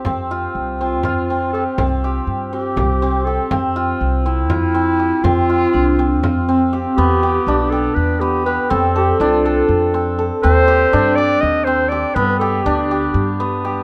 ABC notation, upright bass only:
X:1
M:7/8
L:1/8
Q:1/4=121
K:Flyd
V:1 name="Upright bass" clef=bass
F,,2 C,,2 F,,3 | C,,2 G,,2 C,,3 | F,,2 C,,2 F,,3 | F,,2 C,,2 F,,3 |
E,,2 B,,,2 E,,3 | F,,2 C,,2 F,,3 | _E,,2 G,,2 E,,3 | G,,2 D,,2 G,,3 |]